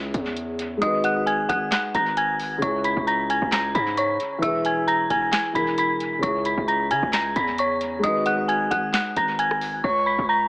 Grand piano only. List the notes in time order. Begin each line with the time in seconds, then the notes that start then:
Already playing: C#3 C#4 E4 G#4
0.77 G#3 D#4
0.83 F#4 B4
2.58 C#3 C#4
2.64 E4 G#4
4.38 E3 E4
4.44 G#4 B4
5.53 E3 E4 G#4
5.58 A#4
6.18 C#3 C#4
6.24 E4 G#4
7.99 G#3 D#4
8.05 F#4 B4